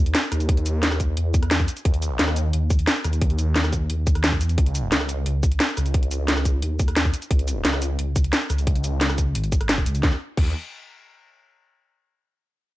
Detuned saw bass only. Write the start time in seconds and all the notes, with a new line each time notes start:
Already playing: D#2
0.32 D#2
1.17 E2
1.85 D#2
2.19 D#2
2.53 D#2
3.04 D#2
3.90 D#2
4.07 D#2
4.41 E2
4.58 C#2
4.92 C#2
5.26 C#2
5.77 C#2
6.62 D#2
7.31 C#2
7.65 C#2
7.99 C#2
8.50 C#2
9.35 G#1
9.86 C#2
10.03 D#2
10.37 D#2